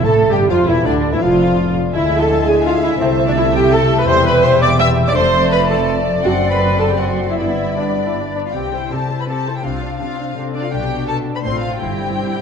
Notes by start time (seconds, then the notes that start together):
Already playing: A2 C4 C5
0.04 A1 A2 A3 A4 A5
0.13 E5
0.30 G1 G2 G3 C4 G4 G5
0.48 F1 F2 F3 F4 E5 F5
0.66 E1 E2 E3 C4 E4 E5
0.85 D2 A2 D3 D4 D5
1.04 B3
1.12 E2 E3 E4 E5
1.21 F1 F2 F3 F4 D5 F5
1.40 B3
1.59 D5
1.76 B3
1.92 D2 D3 G#3 E4 E5 G#5
2.12 B3
2.20 A4 A5
2.30 E5
2.47 B3 G#4 G#5
2.65 F4 E5 F5
2.83 B3 E4 E5
3.00 C2 C3 A3 C4 C5 A5
3.19 C4
3.27 D4 D5
3.36 E4 E5
3.53 C4 G4 G5
3.72 A4 E5 A5
3.90 C4
3.99 B4 B5
4.07 E1 E2 G3 E4 C5 E5 G5 C6
4.25 C4 B4 B5
4.43 C5 E5 C6
4.61 C4 D5 D6
4.78 G3 E5 E6
4.97 C4
5.06 D5 D6
5.13 F1 F2 A3 D4 C5 D5 A5 C6
5.33 A3
5.51 B4 B5
5.69 A3 A4 A5
5.87 D5
6.06 A3
6.23 F#1 F#2 C4 D4 F#4 D5 F#5 C6
6.43 C4
6.51 B4 B5
6.61 D5
6.80 C4 A4 A5
6.88 G4 G5
6.98 C4 F#4 D5 F#5
7.19 C4
7.29 E4 E5
7.38 G1 G2 B3 D4 E4 D5 E5 B5
7.58 B3
7.77 B3 D4 D5
7.97 B3
8.06 E4
8.36 B3 D4 D5
8.45 F4 F5
8.55 C2 C3 C4 G4 G5
8.73 G3 E4 C5
8.91 C3 C4 E4 G4 A4 A5
9.10 E4 C5
9.18 B4 B5
9.27 C3 C4 E4 G4 A4 A5
9.47 E4 C5
9.55 G4 G5
9.64 C2 C3 C4 D4 F4 F5
9.83 C4 D4
10.00 C3 C4 D4 F4 F5
10.19 C4 D4 D5
10.36 C3 C4 D4 A4
10.53 C4 D4 D5
10.63 F4 F5
10.71 B1 B2 D4 G4 G5
10.90 B3
11.07 D4 A4 A5
11.26 D5
11.35 B4 B5
11.44 A1 A2 C4 F4 C5 C6
11.61 F4 C5 F5
11.80 G1 G2 C4 E4 G4 G5
11.99 G3
12.17 E4
12.37 C5